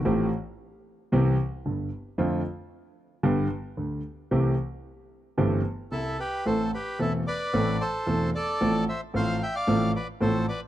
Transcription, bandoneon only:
\new Staff \with { instrumentName = "Bandoneon" } { \time 4/4 \key c \major \tempo 4 = 112 r1 | r1 | r2. <e' a'>8 <g' b'>8 | \key a \minor <a' c''>8 <g' b'>8 <e' a'>8 <b' d''>4 <a' c''>4 <a' d''>8~ |
<a' d''>8 <c'' e''>8 <c'' f''>8 <e'' g''>16 <d'' f''>8. <b' d''>8 <a' c''>8 <b' d''>8 | }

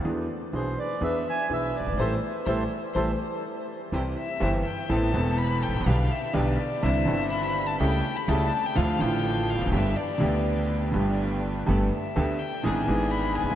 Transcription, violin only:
\new Staff \with { instrumentName = "Violin" } { \time 4/4 \key a \minor \tempo 4 = 124 r4 gis'8 b'8 b'8 e''8 b'8 b'8 | c''8 r8 c''8 r8 c''8 r4. | \key c \major r8 e''4 g''8 a''4 b''8 g''8 | f''8 e''8 d''4 e''4 b''8. a''16 |
g''8. b''16 a''8. g''16 f''8 g''4 f''8 | e''8 d''4 r2 r8 | r8 e''4 g''8 gis''4 b''8 gis''8 | }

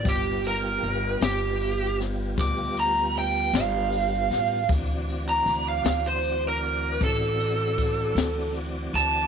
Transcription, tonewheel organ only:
\new Staff \with { instrumentName = "Tonewheel organ" } { \time 12/8 \key g \mixolydian \tempo 4. = 52 <g b f' g'>1. | <e c' fis' d''>1. | }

